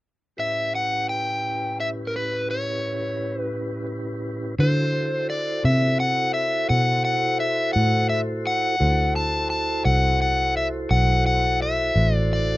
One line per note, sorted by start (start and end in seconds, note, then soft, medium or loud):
0.37 4.55 A2 soft
0.37 4.55 C#4 soft
0.37 4.55 E4 soft
0.37 4.55 G4 soft
0.37 4.55 B4 soft
0.37 0.74 E5 medium
0.75 1.09 F#5 medium
1.09 1.80 G5 medium
1.80 1.88 E5 medium
2.07 2.13 A#4 soft
2.16 2.47 B4 medium
2.51 3.42 C#5 medium
3.42 3.86 B4 medium
4.58 5.61 D3 medium
4.58 8.76 E4 soft
4.58 8.76 F#4 soft
4.58 8.76 A4 soft
4.58 8.76 C5 medium
4.58 5.29 C5 medium
5.30 5.62 D5 medium
5.64 6.66 C3 medium
5.64 6.00 E5 medium
6.00 6.32 F#5 medium
6.34 6.69 E5 medium
6.69 7.72 B2 medium
6.69 7.03 F#5 medium
7.05 7.40 F#5 medium
7.40 7.72 E5 medium
7.73 8.77 A2 medium
7.73 8.09 F#5 medium
8.09 8.19 E5 medium
8.47 9.16 F#5 medium
8.79 9.82 D2 medium
8.79 12.57 E4 medium
8.79 12.57 F#4 medium
8.79 12.57 A4 medium
8.79 12.57 C5 medium
9.16 9.48 A5 medium
9.50 9.85 A5 medium
9.85 10.87 C2 medium
9.85 10.20 F#5 medium
10.22 10.56 F#5 medium
10.57 10.66 E5 medium
10.91 11.93 B1 medium
10.91 11.23 F#5 medium
11.26 11.62 F#5 medium
11.62 12.15 E5 medium
11.96 12.57 A1 medium
12.15 12.33 D5 medium
12.33 12.57 D5 medium